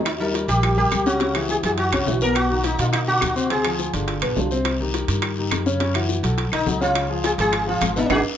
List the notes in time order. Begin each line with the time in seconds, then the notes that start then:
Already playing: D#2
0.01 low bongo
0.05 D#4, high bongo, high timbale, long guiro, claves
0.20 G3 D#4 G4 A#4
0.34 high bongo, high timbale, short guiro
0.48 A#1 G3 G4 A#4, high bongo, high timbale, short guiro
0.63 high bongo, high timbale, long guiro, claves
0.77 G3 G4 A#4, high bongo
0.91 C#2, high bongo, low bongo, high timbale, short guiro, claves
1.06 C#3 C#4 F#4 C#5, high bongo, short guiro
1.20 C#3 C#4 C#5, high bongo, high timbale, long guiro
1.35 E3 E4 G#4, high timbale, claves
1.49 G#4, high bongo, short guiro
1.63 F#2 E3 E4 F#4 G#4, high bongo, high timbale, short guiro
1.78 F#4, high bongo, high timbale, long guiro
1.92 C2 C#3 C#4 C#5, high bongo, high timbale, claves
2.07 B1 E3 E4 F#4, high bongo, low bongo, low timbale, short guiro
2.21 B2 B3 A#4 B4, high bongo, short guiro
2.35 F#4, high bongo, high timbale, long guiro, claves
2.51 D#3 D#4 F#4
2.64 D#4, high bongo, high timbale, short guiro
2.79 B2 D#3 D#4 F4 F#4, high bongo, high timbale, short guiro
2.93 D#4, high bongo, high timbale, long guiro, claves
3.07 D#3 D#4 F#4, high bongo
3.21 D2, high bongo, low bongo, high timbale, short guiro, claves
3.36 C3 C4 C5, high bongo, short guiro
3.50 C3 C4 G#4 C5, high bongo, high timbale, long guiro
3.65 F3 F4 G#4, high timbale, claves
3.79 high bongo, short guiro
3.93 G1 D3 D4 F4, high bongo, high timbale, short guiro
4.08 high bongo, high timbale, long guiro
4.22 B1 B2 B3 B4, high bongo, high timbale, claves
4.36 C2 D3 D4 F4, high bongo, low bongo, low timbale, short guiro
4.51 C3 C4 C5, high bongo, short guiro
4.65 high bongo, high timbale, long guiro, claves
4.80 D#3 D#4 G4
4.94 high bongo, high timbale, short guiro
5.08 G2 D#3 D#4 G4, high bongo, high timbale, short guiro
5.22 high bongo, high timbale, long guiro, claves
5.37 D#3 D#4 G4, high bongo
5.51 F#2, high bongo, low bongo, high timbale, short guiro, claves
5.66 C#3 C#4 C#5, high bongo, short guiro
5.80 C#3 C#4 C#5, high bongo, high timbale, long guiro
5.94 E3 E4 F#4, high timbale, claves
6.09 high bongo, short guiro
6.23 B1 F#3 F#4 A4, high bongo, high timbale, short guiro
6.38 high bongo, high timbale, long guiro
6.52 B1 D#3 D#4 D#5, high bongo, high timbale, claves
6.66 C#2 F#3 F#4 A4, high bongo, low bongo, short guiro
6.81 C#3 C#4 F4 C#5, high bongo, short guiro
6.95 high bongo, high timbale, long guiro, claves
7.09 F3 F4 G#4
7.24 G#4, high bongo, high timbale, short guiro
7.38 G#1 F3 F4 G#4, high bongo, high timbale, short guiro
7.52 high bongo, high timbale, long guiro, claves
7.67 F3 F4 G#4, high bongo
7.81 G#1, high bongo, low bongo, high timbale, short guiro, claves
7.96 B2 B3 D#4 B4, high bongo, short guiro
8.10 G#1 D#4 F#4 G#4, low bongo, high timbale, long guiro, claves